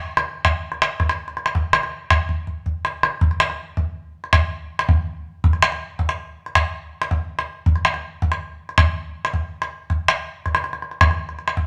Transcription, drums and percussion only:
0.17 calabash click
0.45 calabash thump, calabash click
0.72 calabash click
0.82 calabash click
1.00 calabash thump, calabash click
1.09 calabash click
1.28 calabash click
1.37 calabash click
1.46 calabash click
1.55 calabash thump
1.73 calabash click
1.83 calabash click
2.10 calabash thump, calabash click
2.29 calabash thump
2.47 calabash thump
2.66 calabash thump
2.85 calabash click
3.03 calabash click
3.21 calabash thump
3.31 calabash click
3.40 calabash click
3.50 calabash click
3.77 calabash thump
4.24 calabash click
4.33 calabash thump, calabash click
4.79 calabash click
4.89 calabash thump
5.44 calabash thump
5.53 calabash click
5.62 calabash click
5.72 calabash click
5.99 calabash thump
6.09 calabash click
6.46 calabash click
6.55 calabash thump, calabash click
7.02 calabash click
7.11 calabash thump
7.39 calabash click
7.66 calabash thump
7.76 calabash click
7.85 calabash click
7.94 calabash click
8.22 calabash thump
8.32 calabash click
8.69 calabash click
8.78 calabash thump, calabash click
9.25 calabash click
9.34 calabash thump
9.62 calabash click
9.90 calabash thump, calabash click
10.08 calabash click
10.46 calabash thump, calabash click
10.55 calabash click
10.64 calabash click
10.73 calabash click
10.82 calabash click
10.91 calabash click
11.01 calabash thump, calabash click
11.11 calabash click
11.29 calabash click
11.39 calabash click
11.48 calabash click
11.57 calabash thump

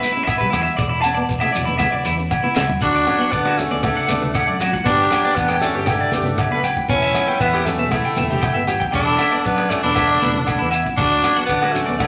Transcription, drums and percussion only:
0.03 closed hi-hat, shekere
0.16 closed hi-hat
0.27 kick, cross-stick, closed hi-hat, low agogo, shekere
0.41 kick
0.53 cross-stick, closed hi-hat, low conga, low agogo, shekere
0.66 closed hi-hat
0.78 kick, closed hi-hat, shekere
1.04 closed hi-hat, low agogo, shekere
1.17 closed hi-hat
1.29 kick, closed hi-hat, shekere
1.41 cross-stick, high conga, low agogo
1.54 closed hi-hat, low conga, shekere
1.67 closed hi-hat, high conga
1.79 kick, cross-stick, closed hi-hat, high conga, low agogo, shekere
1.94 low conga
2.05 closed hi-hat, shekere
2.19 closed hi-hat
2.31 kick, high tom, low agogo, shekere
2.45 high conga
2.55 snare, low conga, low agogo, shekere
2.70 floor tom
2.81 kick, closed hi-hat, shekere
3.07 cross-stick, closed hi-hat, low conga, low agogo
3.21 closed hi-hat
3.32 kick, closed hi-hat, shekere
3.45 cross-stick, low agogo
3.58 closed hi-hat, low conga, shekere
3.71 closed hi-hat
3.83 kick, cross-stick, closed hi-hat, high conga, low agogo, shekere
4.09 closed hi-hat, high conga, low conga, shekere
4.22 closed hi-hat, high conga
4.35 kick, cross-stick, closed hi-hat, low agogo, shekere
4.60 cross-stick, closed hi-hat, low conga, low agogo, shekere
4.73 kick, closed hi-hat, high conga
4.85 kick, closed hi-hat, shekere
5.11 cross-stick, closed hi-hat, low conga, low agogo, shekere
5.24 closed hi-hat
5.35 kick, closed hi-hat, shekere
5.49 cross-stick, low agogo
5.61 closed hi-hat, low conga, shekere
5.74 closed hi-hat
5.86 kick, cross-stick, closed hi-hat, high conga, low agogo, shekere
6.12 closed hi-hat, high conga, low conga, shekere
6.25 closed hi-hat, high conga
6.38 kick, cross-stick, closed hi-hat, low agogo, shekere
6.63 closed hi-hat, low conga, low agogo, shekere
6.76 kick, closed hi-hat, high conga
6.89 kick, closed hi-hat, shekere
7.14 cross-stick, closed hi-hat, low conga, low agogo, shekere
7.28 closed hi-hat
7.40 kick, closed hi-hat, shekere
7.53 cross-stick, low agogo
7.66 closed hi-hat, low conga, shekere
7.79 closed hi-hat
7.91 kick, cross-stick, closed hi-hat, high conga, low agogo, shekere
8.16 closed hi-hat, high conga, low conga, shekere
8.31 closed hi-hat, high conga
8.42 kick, cross-stick, closed hi-hat, low agogo, shekere
8.68 cross-stick, closed hi-hat, low conga, low agogo, shekere
8.81 kick, closed hi-hat, high conga
8.93 kick, closed hi-hat, shekere
9.19 cross-stick, closed hi-hat, low agogo, shekere
9.32 closed hi-hat
9.45 kick, closed hi-hat, shekere
9.56 cross-stick, low agogo
9.71 closed hi-hat, low conga, shekere
9.85 closed hi-hat
9.95 kick, cross-stick, closed hi-hat, high conga, low agogo, shekere
10.22 closed hi-hat, high conga, shekere
10.34 closed hi-hat, high conga
10.47 kick, cross-stick, closed hi-hat, low agogo, shekere
10.72 closed hi-hat, low agogo, shekere
10.86 kick, closed hi-hat, high conga
10.97 kick, closed hi-hat, shekere
11.23 cross-stick, closed hi-hat, low conga, low agogo, shekere
11.38 closed hi-hat
11.49 kick, closed hi-hat, shekere
11.62 cross-stick, low agogo
11.75 closed hi-hat, low conga, shekere
11.89 closed hi-hat
11.99 kick, cross-stick, closed hi-hat, high conga, low agogo, shekere

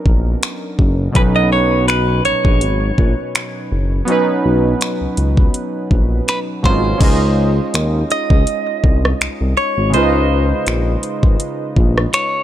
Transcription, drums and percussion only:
0.06 kick
0.43 finger snap, closed hi-hat
0.79 kick
1.15 kick, closed hi-hat
1.88 finger snap, closed hi-hat
2.25 closed hi-hat
2.45 kick
2.61 closed hi-hat
2.98 kick
3.35 finger snap, closed hi-hat
4.08 closed hi-hat
4.81 finger snap, closed hi-hat
5.17 closed hi-hat
5.37 kick
5.54 closed hi-hat
5.91 kick
6.28 finger snap, closed hi-hat
6.64 kick
7.01 kick, closed hi-hat, crash
7.74 finger snap, closed hi-hat
8.10 closed hi-hat
8.30 kick
8.47 closed hi-hat
8.84 kick
9.05 cross-stick
9.21 finger snap, closed hi-hat
9.94 closed hi-hat
10.66 finger snap, closed hi-hat
11.03 closed hi-hat
11.23 kick
11.40 closed hi-hat
11.76 kick
11.98 cross-stick
12.13 finger snap, closed hi-hat

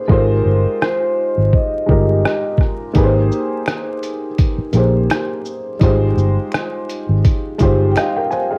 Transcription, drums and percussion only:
0.09 kick
0.82 cross-stick
1.53 kick
1.89 kick
2.25 cross-stick
2.58 kick, cross-stick
2.95 kick, closed hi-hat
3.32 shaker
3.66 finger snap, cross-stick, closed hi-hat
4.03 closed hi-hat, shaker
4.38 kick, closed hi-hat
4.73 closed hi-hat, shaker
5.10 finger snap, cross-stick, closed hi-hat
5.45 shaker
5.81 kick, closed hi-hat
6.18 shaker
6.52 finger snap, cross-stick, closed hi-hat
6.89 closed hi-hat, shaker
7.25 kick, closed hi-hat
7.59 kick, closed hi-hat, shaker
7.96 finger snap, cross-stick, closed hi-hat
8.31 cross-stick, shaker

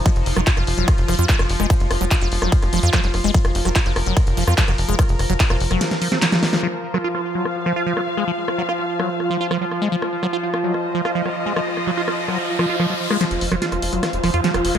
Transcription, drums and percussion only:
0.06 kick, cross-stick, closed hi-hat, ride
0.16 closed hi-hat
0.26 open hi-hat
0.36 cross-stick
0.47 kick, clap, closed hi-hat, ride
0.57 cross-stick, closed hi-hat
0.67 open hi-hat
0.78 closed hi-hat
0.88 kick, cross-stick, closed hi-hat, ride
0.98 closed hi-hat
1.08 cross-stick, open hi-hat
1.19 closed hi-hat
1.29 kick, clap, closed hi-hat, ride
1.39 cross-stick, closed hi-hat
1.49 open hi-hat
1.60 cross-stick, closed hi-hat
1.70 kick, closed hi-hat, ride
1.80 closed hi-hat
1.91 cross-stick, open hi-hat
2.01 closed hi-hat
2.11 kick, cross-stick, clap, closed hi-hat, ride
2.21 closed hi-hat
2.32 open hi-hat
2.42 cross-stick, closed hi-hat
2.52 kick, closed hi-hat, ride
2.62 cross-stick, closed hi-hat
2.73 open hi-hat
2.83 closed hi-hat
2.93 kick, cross-stick, clap, closed hi-hat, ride
3.04 closed hi-hat
3.14 cross-stick, open hi-hat
3.24 open hi-hat
3.34 kick, closed hi-hat, ride
3.45 cross-stick, closed hi-hat
3.55 open hi-hat
3.65 cross-stick, closed hi-hat
3.76 kick, clap, closed hi-hat, ride
3.86 closed hi-hat
3.96 cross-stick, open hi-hat
4.06 closed hi-hat
4.17 kick, cross-stick, closed hi-hat, ride
4.27 closed hi-hat
4.37 open hi-hat
4.47 cross-stick
4.58 kick, clap, closed hi-hat, ride
4.68 cross-stick, closed hi-hat
4.78 open hi-hat
4.89 closed hi-hat
4.99 kick, cross-stick, closed hi-hat, ride
5.09 closed hi-hat
5.19 cross-stick, open hi-hat
5.30 closed hi-hat
5.40 kick, clap, closed hi-hat, ride
5.50 cross-stick, closed hi-hat
5.60 open hi-hat
5.71 cross-stick, closed hi-hat
5.81 snare, closed hi-hat, ride
5.91 snare, closed hi-hat
6.02 open hi-hat
6.12 snare, closed hi-hat
6.22 snare, clap, closed hi-hat, ride
6.32 snare, closed hi-hat
6.43 snare, open hi-hat
6.53 snare, open hi-hat
6.63 cross-stick
6.94 cross-stick
7.15 cross-stick
7.45 cross-stick
7.66 cross-stick
7.97 cross-stick
8.17 cross-stick
8.48 cross-stick
8.69 cross-stick
9.00 cross-stick
9.20 cross-stick
9.51 cross-stick
9.71 cross-stick
10.02 cross-stick
10.23 cross-stick
10.54 cross-stick
10.74 cross-stick
11.05 cross-stick
11.26 cross-stick
11.56 cross-stick
11.77 cross-stick
12.08 cross-stick
12.28 cross-stick
12.59 cross-stick
12.80 cross-stick
13.11 cross-stick
13.21 cross-stick, snare, closed hi-hat
13.31 closed hi-hat
13.41 open hi-hat
13.52 cross-stick, closed hi-hat
13.62 snare, closed hi-hat
13.72 cross-stick, closed hi-hat
13.82 open hi-hat
13.93 closed hi-hat
14.03 cross-stick, snare, closed hi-hat
14.13 closed hi-hat
14.24 cross-stick, open hi-hat
14.34 closed hi-hat
14.44 snare, closed hi-hat
14.54 cross-stick, closed hi-hat
14.65 open hi-hat
14.75 cross-stick, closed hi-hat

